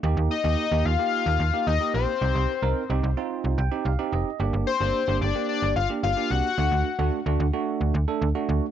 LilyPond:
<<
  \new Staff \with { instrumentName = "Analog synth lead" } { \time 4/4 \key g \minor \tempo 4 = 110 r8 ees''4 f''4. ees''8 c''8~ | c''4. r2 r8 | r8 c''4 d''8 d''8 f''8 f''8 fis''8~ | fis''4 r2. | }
  \new Staff \with { instrumentName = "Tine electric piano" } { \time 4/4 \key g \minor << { r1 | r2 r8 g''8 f''8 ees''8 | r1 | r1 | } \\ { <bes ees' g'>8 r16 <bes ees' g'>16 r16 <bes ees' g'>16 r16 <bes ees' g'>8. r16 <bes ees' g'>16 r16 <bes ees' g'>8 r16 | <c' ees' g'>8 r16 <c' ees' bes'>16 r16 <c' ees' g'>16 r16 <c' ees' f'>8. r16 <c' ees' g'>16 r16 <c' ees' g'>8 r16 | <bes d' g'>8 r16 <bes d' g'>16 r16 <bes d' g'>16 r16 <bes d' g'>8. r16 <bes d' g'>16 r16 <bes d' g'>8 r16 | <a d' fis'>8 r16 <a d' fis'>16 r16 <a d' fis'>16 r16 <a d' fis'>8. r16 <a d' a'>16 r16 <a d' fis'>8 r16 | } >> }
  \new Staff \with { instrumentName = "FM bass" } { \clef bass \time 4/4 \key g \minor ees,16 ees,16 r16 ees,16 r16 ees,16 ees,16 r8 ees,16 ees,16 r16 ees,16 r16 bes,,16 r16 | c,16 c,16 r16 c,16 r16 c,16 c,16 r8 c,16 c,16 r16 c,16 r16 f,,16 r16 | g,,16 g,,16 r16 g,,16 r16 g,,16 g,,16 r8 g,,16 g,,16 r16 g,,16 r16 c,16 r16 | d,16 d,16 r16 d,16 r16 d,16 d,16 r8 d,16 d,16 r16 d,16 r16 d,16 r16 | }
>>